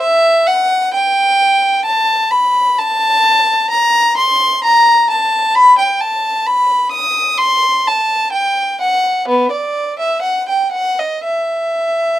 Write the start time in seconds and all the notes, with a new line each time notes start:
0.00 E5
0.47 F#5
0.94 G5
1.85 A5
2.31 B5
2.78 A5
3.70 A#5
4.17 C6
4.64 A#5
5.10 A5
5.55 B5
5.78 G5
6.01 A5
6.46 B5
6.92 D#6
7.38 C6
7.87 A5
8.32 G5
8.81 F#5
9.28 B3
9.51 D5
9.99 E5
10.22 F#5
10.49 G5
10.71 F#5
10.99 D#5
11.24 E5